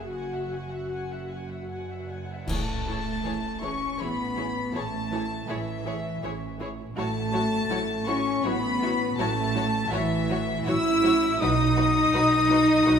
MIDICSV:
0, 0, Header, 1, 9, 480
1, 0, Start_track
1, 0, Tempo, 793651
1, 66, Time_signature, 3, 2, 24, 8
1, 1506, Tempo, 759494
1, 2466, Tempo, 741656
1, 6786, Tempo, 728155
1, 8307, End_track
2, 0, Start_track
2, 0, Title_t, "Flute"
2, 0, Program_c, 0, 73
2, 1506, Note_on_c, 0, 81, 92
2, 2226, Note_on_c, 0, 85, 89
2, 2236, Note_off_c, 0, 81, 0
2, 2464, Note_on_c, 0, 83, 90
2, 2473, Note_off_c, 0, 85, 0
2, 2941, Note_off_c, 0, 83, 0
2, 2945, Note_on_c, 0, 81, 95
2, 3422, Note_on_c, 0, 76, 87
2, 3432, Note_off_c, 0, 81, 0
2, 4147, Note_off_c, 0, 76, 0
2, 4382, Note_on_c, 0, 81, 108
2, 5099, Note_on_c, 0, 85, 97
2, 5108, Note_off_c, 0, 81, 0
2, 5344, Note_on_c, 0, 83, 113
2, 5354, Note_off_c, 0, 85, 0
2, 5830, Note_on_c, 0, 81, 114
2, 5839, Note_off_c, 0, 83, 0
2, 6299, Note_on_c, 0, 76, 103
2, 6309, Note_off_c, 0, 81, 0
2, 6789, Note_off_c, 0, 76, 0
2, 6796, Note_on_c, 0, 88, 115
2, 7259, Note_on_c, 0, 87, 127
2, 7269, Note_off_c, 0, 88, 0
2, 8307, Note_off_c, 0, 87, 0
2, 8307, End_track
3, 0, Start_track
3, 0, Title_t, "Violin section"
3, 0, Program_c, 1, 48
3, 0, Note_on_c, 1, 80, 75
3, 64, Note_off_c, 1, 80, 0
3, 67, Note_on_c, 1, 78, 54
3, 1247, Note_off_c, 1, 78, 0
3, 1502, Note_on_c, 1, 81, 102
3, 2200, Note_off_c, 1, 81, 0
3, 2219, Note_on_c, 1, 85, 94
3, 2461, Note_on_c, 1, 83, 107
3, 2462, Note_off_c, 1, 85, 0
3, 2944, Note_on_c, 1, 81, 102
3, 2948, Note_off_c, 1, 83, 0
3, 3424, Note_on_c, 1, 76, 97
3, 3425, Note_off_c, 1, 81, 0
3, 4147, Note_off_c, 1, 76, 0
3, 4396, Note_on_c, 1, 81, 125
3, 5077, Note_off_c, 1, 81, 0
3, 5093, Note_on_c, 1, 85, 113
3, 5334, Note_on_c, 1, 83, 127
3, 5336, Note_off_c, 1, 85, 0
3, 5814, Note_on_c, 1, 81, 127
3, 5816, Note_off_c, 1, 83, 0
3, 6279, Note_off_c, 1, 81, 0
3, 6290, Note_on_c, 1, 76, 124
3, 6776, Note_on_c, 1, 88, 127
3, 6784, Note_off_c, 1, 76, 0
3, 7265, Note_on_c, 1, 87, 127
3, 7266, Note_off_c, 1, 88, 0
3, 8307, Note_off_c, 1, 87, 0
3, 8307, End_track
4, 0, Start_track
4, 0, Title_t, "Violin section"
4, 0, Program_c, 2, 48
4, 0, Note_on_c, 2, 76, 44
4, 0, Note_on_c, 2, 78, 41
4, 68, Note_off_c, 2, 78, 0
4, 70, Note_off_c, 2, 76, 0
4, 78, Note_on_c, 2, 80, 47
4, 80, Note_on_c, 2, 78, 46
4, 185, Note_off_c, 2, 80, 0
4, 186, Note_off_c, 2, 78, 0
4, 198, Note_on_c, 2, 78, 39
4, 199, Note_on_c, 2, 76, 40
4, 309, Note_off_c, 2, 78, 0
4, 311, Note_on_c, 2, 80, 37
4, 314, Note_off_c, 2, 76, 0
4, 316, Note_on_c, 2, 78, 34
4, 419, Note_off_c, 2, 78, 0
4, 426, Note_on_c, 2, 78, 37
4, 427, Note_on_c, 2, 76, 36
4, 430, Note_off_c, 2, 80, 0
4, 540, Note_off_c, 2, 78, 0
4, 547, Note_on_c, 2, 78, 42
4, 548, Note_off_c, 2, 76, 0
4, 552, Note_on_c, 2, 80, 42
4, 660, Note_off_c, 2, 78, 0
4, 662, Note_off_c, 2, 80, 0
4, 674, Note_on_c, 2, 76, 36
4, 674, Note_on_c, 2, 78, 36
4, 787, Note_on_c, 2, 80, 37
4, 788, Note_off_c, 2, 78, 0
4, 792, Note_off_c, 2, 76, 0
4, 795, Note_on_c, 2, 78, 35
4, 894, Note_off_c, 2, 78, 0
4, 900, Note_on_c, 2, 76, 37
4, 901, Note_on_c, 2, 78, 36
4, 909, Note_off_c, 2, 80, 0
4, 1016, Note_off_c, 2, 78, 0
4, 1023, Note_on_c, 2, 78, 38
4, 1025, Note_off_c, 2, 76, 0
4, 1029, Note_on_c, 2, 80, 37
4, 1138, Note_off_c, 2, 78, 0
4, 1141, Note_off_c, 2, 80, 0
4, 1148, Note_on_c, 2, 78, 34
4, 1153, Note_on_c, 2, 76, 34
4, 1264, Note_off_c, 2, 78, 0
4, 1271, Note_on_c, 2, 78, 36
4, 1271, Note_on_c, 2, 80, 35
4, 1272, Note_off_c, 2, 76, 0
4, 1390, Note_off_c, 2, 78, 0
4, 1390, Note_off_c, 2, 80, 0
4, 1403, Note_on_c, 2, 76, 37
4, 1403, Note_on_c, 2, 78, 34
4, 1512, Note_on_c, 2, 68, 64
4, 1513, Note_off_c, 2, 76, 0
4, 1513, Note_off_c, 2, 78, 0
4, 1513, Note_on_c, 2, 73, 68
4, 1562, Note_off_c, 2, 68, 0
4, 1563, Note_off_c, 2, 73, 0
4, 1758, Note_on_c, 2, 73, 55
4, 1762, Note_on_c, 2, 68, 58
4, 1808, Note_off_c, 2, 73, 0
4, 1812, Note_off_c, 2, 68, 0
4, 1982, Note_on_c, 2, 68, 62
4, 1987, Note_on_c, 2, 73, 67
4, 2033, Note_off_c, 2, 68, 0
4, 2037, Note_off_c, 2, 73, 0
4, 2220, Note_on_c, 2, 73, 61
4, 2224, Note_on_c, 2, 68, 57
4, 2270, Note_off_c, 2, 73, 0
4, 2275, Note_off_c, 2, 68, 0
4, 2446, Note_on_c, 2, 68, 62
4, 2447, Note_on_c, 2, 73, 68
4, 2497, Note_off_c, 2, 68, 0
4, 2498, Note_off_c, 2, 73, 0
4, 2696, Note_on_c, 2, 73, 58
4, 2697, Note_on_c, 2, 68, 61
4, 2747, Note_off_c, 2, 73, 0
4, 2748, Note_off_c, 2, 68, 0
4, 2944, Note_on_c, 2, 68, 72
4, 2946, Note_on_c, 2, 73, 71
4, 2996, Note_off_c, 2, 68, 0
4, 2998, Note_off_c, 2, 73, 0
4, 3186, Note_on_c, 2, 73, 65
4, 3187, Note_on_c, 2, 68, 62
4, 3237, Note_off_c, 2, 73, 0
4, 3238, Note_off_c, 2, 68, 0
4, 3422, Note_on_c, 2, 68, 78
4, 3425, Note_on_c, 2, 73, 77
4, 3474, Note_off_c, 2, 68, 0
4, 3476, Note_off_c, 2, 73, 0
4, 3666, Note_on_c, 2, 68, 68
4, 3668, Note_on_c, 2, 73, 67
4, 3718, Note_off_c, 2, 68, 0
4, 3720, Note_off_c, 2, 73, 0
4, 3906, Note_on_c, 2, 73, 73
4, 3907, Note_on_c, 2, 68, 68
4, 3958, Note_off_c, 2, 73, 0
4, 3959, Note_off_c, 2, 68, 0
4, 4145, Note_on_c, 2, 68, 71
4, 4150, Note_on_c, 2, 73, 64
4, 4197, Note_off_c, 2, 68, 0
4, 4202, Note_off_c, 2, 73, 0
4, 4388, Note_on_c, 2, 73, 82
4, 4390, Note_on_c, 2, 66, 79
4, 4440, Note_off_c, 2, 73, 0
4, 4441, Note_off_c, 2, 66, 0
4, 4613, Note_on_c, 2, 66, 73
4, 4615, Note_on_c, 2, 73, 69
4, 4665, Note_off_c, 2, 66, 0
4, 4667, Note_off_c, 2, 73, 0
4, 4855, Note_on_c, 2, 66, 79
4, 4859, Note_on_c, 2, 73, 84
4, 4907, Note_off_c, 2, 66, 0
4, 4910, Note_off_c, 2, 73, 0
4, 5101, Note_on_c, 2, 66, 74
4, 5102, Note_on_c, 2, 73, 78
4, 5153, Note_off_c, 2, 66, 0
4, 5153, Note_off_c, 2, 73, 0
4, 5332, Note_on_c, 2, 73, 82
4, 5334, Note_on_c, 2, 66, 75
4, 5384, Note_off_c, 2, 73, 0
4, 5386, Note_off_c, 2, 66, 0
4, 5582, Note_on_c, 2, 66, 74
4, 5585, Note_on_c, 2, 73, 73
4, 5633, Note_off_c, 2, 66, 0
4, 5637, Note_off_c, 2, 73, 0
4, 5818, Note_on_c, 2, 66, 92
4, 5819, Note_on_c, 2, 73, 84
4, 5870, Note_off_c, 2, 66, 0
4, 5871, Note_off_c, 2, 73, 0
4, 6054, Note_on_c, 2, 66, 72
4, 6057, Note_on_c, 2, 73, 76
4, 6106, Note_off_c, 2, 66, 0
4, 6109, Note_off_c, 2, 73, 0
4, 6293, Note_on_c, 2, 66, 94
4, 6295, Note_on_c, 2, 73, 90
4, 6345, Note_off_c, 2, 66, 0
4, 6347, Note_off_c, 2, 73, 0
4, 6536, Note_on_c, 2, 73, 77
4, 6537, Note_on_c, 2, 66, 86
4, 6588, Note_off_c, 2, 73, 0
4, 6589, Note_off_c, 2, 66, 0
4, 6770, Note_on_c, 2, 66, 80
4, 6772, Note_on_c, 2, 73, 84
4, 6823, Note_off_c, 2, 66, 0
4, 6825, Note_off_c, 2, 73, 0
4, 7025, Note_on_c, 2, 66, 80
4, 7025, Note_on_c, 2, 73, 85
4, 7077, Note_off_c, 2, 66, 0
4, 7078, Note_off_c, 2, 73, 0
4, 7271, Note_on_c, 2, 66, 89
4, 7272, Note_on_c, 2, 71, 93
4, 7323, Note_off_c, 2, 66, 0
4, 7324, Note_off_c, 2, 71, 0
4, 7493, Note_on_c, 2, 66, 82
4, 7498, Note_on_c, 2, 71, 77
4, 7545, Note_off_c, 2, 66, 0
4, 7551, Note_off_c, 2, 71, 0
4, 7741, Note_on_c, 2, 71, 95
4, 7745, Note_on_c, 2, 66, 92
4, 7794, Note_off_c, 2, 71, 0
4, 7798, Note_off_c, 2, 66, 0
4, 7977, Note_on_c, 2, 66, 85
4, 7981, Note_on_c, 2, 71, 86
4, 8030, Note_off_c, 2, 66, 0
4, 8034, Note_off_c, 2, 71, 0
4, 8215, Note_on_c, 2, 66, 86
4, 8215, Note_on_c, 2, 71, 83
4, 8267, Note_off_c, 2, 66, 0
4, 8268, Note_off_c, 2, 71, 0
4, 8307, End_track
5, 0, Start_track
5, 0, Title_t, "Viola section"
5, 0, Program_c, 3, 48
5, 0, Note_on_c, 3, 68, 79
5, 62, Note_on_c, 3, 66, 66
5, 65, Note_off_c, 3, 68, 0
5, 1244, Note_off_c, 3, 66, 0
5, 1501, Note_on_c, 3, 52, 65
5, 1503, Note_on_c, 3, 64, 60
5, 1552, Note_off_c, 3, 52, 0
5, 1553, Note_off_c, 3, 64, 0
5, 1742, Note_on_c, 3, 64, 60
5, 1746, Note_on_c, 3, 52, 55
5, 1792, Note_off_c, 3, 64, 0
5, 1797, Note_off_c, 3, 52, 0
5, 1981, Note_on_c, 3, 52, 62
5, 1981, Note_on_c, 3, 64, 61
5, 2031, Note_off_c, 3, 52, 0
5, 2032, Note_off_c, 3, 64, 0
5, 2217, Note_on_c, 3, 64, 60
5, 2219, Note_on_c, 3, 52, 62
5, 2267, Note_off_c, 3, 64, 0
5, 2269, Note_off_c, 3, 52, 0
5, 2464, Note_on_c, 3, 64, 63
5, 2467, Note_on_c, 3, 52, 62
5, 2515, Note_off_c, 3, 64, 0
5, 2518, Note_off_c, 3, 52, 0
5, 2699, Note_on_c, 3, 52, 62
5, 2699, Note_on_c, 3, 64, 59
5, 2750, Note_off_c, 3, 52, 0
5, 2750, Note_off_c, 3, 64, 0
5, 2934, Note_on_c, 3, 52, 65
5, 2938, Note_on_c, 3, 64, 65
5, 2986, Note_off_c, 3, 52, 0
5, 2989, Note_off_c, 3, 64, 0
5, 3183, Note_on_c, 3, 52, 68
5, 3184, Note_on_c, 3, 64, 66
5, 3234, Note_off_c, 3, 52, 0
5, 3235, Note_off_c, 3, 64, 0
5, 3419, Note_on_c, 3, 52, 67
5, 3420, Note_on_c, 3, 64, 69
5, 3471, Note_off_c, 3, 52, 0
5, 3472, Note_off_c, 3, 64, 0
5, 3659, Note_on_c, 3, 52, 68
5, 3659, Note_on_c, 3, 64, 67
5, 3711, Note_off_c, 3, 52, 0
5, 3711, Note_off_c, 3, 64, 0
5, 3905, Note_on_c, 3, 64, 64
5, 3908, Note_on_c, 3, 52, 73
5, 3957, Note_off_c, 3, 64, 0
5, 3959, Note_off_c, 3, 52, 0
5, 4142, Note_on_c, 3, 52, 68
5, 4143, Note_on_c, 3, 64, 69
5, 4194, Note_off_c, 3, 52, 0
5, 4195, Note_off_c, 3, 64, 0
5, 4378, Note_on_c, 3, 64, 79
5, 4381, Note_on_c, 3, 54, 79
5, 4430, Note_off_c, 3, 64, 0
5, 4433, Note_off_c, 3, 54, 0
5, 4613, Note_on_c, 3, 54, 78
5, 4615, Note_on_c, 3, 64, 68
5, 4665, Note_off_c, 3, 54, 0
5, 4666, Note_off_c, 3, 64, 0
5, 4857, Note_on_c, 3, 64, 74
5, 4858, Note_on_c, 3, 54, 77
5, 4909, Note_off_c, 3, 64, 0
5, 4910, Note_off_c, 3, 54, 0
5, 5097, Note_on_c, 3, 54, 75
5, 5099, Note_on_c, 3, 64, 76
5, 5149, Note_off_c, 3, 54, 0
5, 5151, Note_off_c, 3, 64, 0
5, 5338, Note_on_c, 3, 54, 77
5, 5340, Note_on_c, 3, 64, 79
5, 5389, Note_off_c, 3, 54, 0
5, 5392, Note_off_c, 3, 64, 0
5, 5577, Note_on_c, 3, 54, 75
5, 5579, Note_on_c, 3, 64, 75
5, 5629, Note_off_c, 3, 54, 0
5, 5631, Note_off_c, 3, 64, 0
5, 5818, Note_on_c, 3, 54, 88
5, 5820, Note_on_c, 3, 64, 85
5, 5870, Note_off_c, 3, 54, 0
5, 5872, Note_off_c, 3, 64, 0
5, 6053, Note_on_c, 3, 54, 83
5, 6054, Note_on_c, 3, 64, 80
5, 6105, Note_off_c, 3, 54, 0
5, 6106, Note_off_c, 3, 64, 0
5, 6283, Note_on_c, 3, 64, 83
5, 6285, Note_on_c, 3, 54, 78
5, 6335, Note_off_c, 3, 64, 0
5, 6337, Note_off_c, 3, 54, 0
5, 6527, Note_on_c, 3, 64, 76
5, 6528, Note_on_c, 3, 54, 80
5, 6579, Note_off_c, 3, 64, 0
5, 6580, Note_off_c, 3, 54, 0
5, 6775, Note_on_c, 3, 64, 80
5, 6777, Note_on_c, 3, 54, 80
5, 6828, Note_off_c, 3, 64, 0
5, 6829, Note_off_c, 3, 54, 0
5, 7014, Note_on_c, 3, 54, 86
5, 7017, Note_on_c, 3, 64, 85
5, 7067, Note_off_c, 3, 54, 0
5, 7069, Note_off_c, 3, 64, 0
5, 7263, Note_on_c, 3, 54, 90
5, 7266, Note_on_c, 3, 63, 95
5, 7316, Note_off_c, 3, 54, 0
5, 7318, Note_off_c, 3, 63, 0
5, 7499, Note_on_c, 3, 54, 83
5, 7501, Note_on_c, 3, 63, 82
5, 7552, Note_off_c, 3, 54, 0
5, 7553, Note_off_c, 3, 63, 0
5, 7746, Note_on_c, 3, 54, 83
5, 7746, Note_on_c, 3, 63, 90
5, 7798, Note_off_c, 3, 54, 0
5, 7799, Note_off_c, 3, 63, 0
5, 7980, Note_on_c, 3, 63, 81
5, 7985, Note_on_c, 3, 54, 84
5, 8033, Note_off_c, 3, 63, 0
5, 8038, Note_off_c, 3, 54, 0
5, 8219, Note_on_c, 3, 54, 81
5, 8219, Note_on_c, 3, 63, 84
5, 8272, Note_off_c, 3, 54, 0
5, 8272, Note_off_c, 3, 63, 0
5, 8307, End_track
6, 0, Start_track
6, 0, Title_t, "French horn section"
6, 0, Program_c, 4, 60
6, 1507, Note_on_c, 4, 57, 85
6, 2203, Note_off_c, 4, 57, 0
6, 2242, Note_on_c, 4, 61, 91
6, 2474, Note_off_c, 4, 61, 0
6, 2480, Note_on_c, 4, 59, 92
6, 2957, Note_off_c, 4, 59, 0
6, 2969, Note_on_c, 4, 57, 88
6, 3428, Note_off_c, 4, 57, 0
6, 3449, Note_on_c, 4, 52, 79
6, 4160, Note_off_c, 4, 52, 0
6, 4403, Note_on_c, 4, 57, 99
6, 5080, Note_off_c, 4, 57, 0
6, 5098, Note_on_c, 4, 61, 111
6, 5338, Note_off_c, 4, 61, 0
6, 5340, Note_on_c, 4, 59, 112
6, 5819, Note_off_c, 4, 59, 0
6, 5834, Note_on_c, 4, 57, 103
6, 6287, Note_on_c, 4, 52, 99
6, 6289, Note_off_c, 4, 57, 0
6, 6783, Note_off_c, 4, 52, 0
6, 6785, Note_on_c, 4, 64, 127
6, 7266, Note_on_c, 4, 63, 127
6, 7271, Note_off_c, 4, 64, 0
6, 8307, Note_off_c, 4, 63, 0
6, 8307, End_track
7, 0, Start_track
7, 0, Title_t, "Cello section"
7, 0, Program_c, 5, 48
7, 0, Note_on_c, 5, 42, 72
7, 1357, Note_off_c, 5, 42, 0
7, 1506, Note_on_c, 5, 57, 87
7, 2202, Note_off_c, 5, 57, 0
7, 2234, Note_on_c, 5, 61, 76
7, 2465, Note_off_c, 5, 61, 0
7, 2472, Note_on_c, 5, 59, 82
7, 2953, Note_off_c, 5, 59, 0
7, 2957, Note_on_c, 5, 57, 91
7, 3431, Note_off_c, 5, 57, 0
7, 3431, Note_on_c, 5, 52, 81
7, 4151, Note_off_c, 5, 52, 0
7, 4382, Note_on_c, 5, 57, 107
7, 5070, Note_off_c, 5, 57, 0
7, 5097, Note_on_c, 5, 61, 95
7, 5338, Note_off_c, 5, 61, 0
7, 5338, Note_on_c, 5, 59, 106
7, 5810, Note_on_c, 5, 57, 118
7, 5818, Note_off_c, 5, 59, 0
7, 6276, Note_off_c, 5, 57, 0
7, 6290, Note_on_c, 5, 52, 102
7, 6783, Note_on_c, 5, 64, 115
7, 6784, Note_off_c, 5, 52, 0
7, 7270, Note_off_c, 5, 64, 0
7, 7272, Note_on_c, 5, 63, 127
7, 8307, Note_off_c, 5, 63, 0
7, 8307, End_track
8, 0, Start_track
8, 0, Title_t, "Double bass section"
8, 0, Program_c, 6, 48
8, 0, Note_on_c, 6, 30, 76
8, 1356, Note_off_c, 6, 30, 0
8, 1510, Note_on_c, 6, 33, 73
8, 1932, Note_off_c, 6, 33, 0
8, 1985, Note_on_c, 6, 33, 74
8, 2409, Note_off_c, 6, 33, 0
8, 2460, Note_on_c, 6, 33, 79
8, 2891, Note_off_c, 6, 33, 0
8, 2949, Note_on_c, 6, 33, 84
8, 3371, Note_off_c, 6, 33, 0
8, 3430, Note_on_c, 6, 33, 83
8, 3854, Note_off_c, 6, 33, 0
8, 3903, Note_on_c, 6, 33, 84
8, 4328, Note_off_c, 6, 33, 0
8, 4378, Note_on_c, 6, 33, 97
8, 4798, Note_off_c, 6, 33, 0
8, 4843, Note_on_c, 6, 33, 83
8, 5274, Note_off_c, 6, 33, 0
8, 5329, Note_on_c, 6, 33, 96
8, 5757, Note_off_c, 6, 33, 0
8, 5811, Note_on_c, 6, 33, 110
8, 6230, Note_off_c, 6, 33, 0
8, 6280, Note_on_c, 6, 33, 104
8, 6721, Note_off_c, 6, 33, 0
8, 6777, Note_on_c, 6, 33, 102
8, 7210, Note_off_c, 6, 33, 0
8, 7266, Note_on_c, 6, 35, 111
8, 7691, Note_off_c, 6, 35, 0
8, 7735, Note_on_c, 6, 35, 103
8, 8162, Note_off_c, 6, 35, 0
8, 8223, Note_on_c, 6, 35, 106
8, 8307, Note_off_c, 6, 35, 0
8, 8307, End_track
9, 0, Start_track
9, 0, Title_t, "Drums"
9, 1498, Note_on_c, 9, 35, 72
9, 1498, Note_on_c, 9, 49, 73
9, 1560, Note_off_c, 9, 35, 0
9, 1560, Note_off_c, 9, 49, 0
9, 8307, End_track
0, 0, End_of_file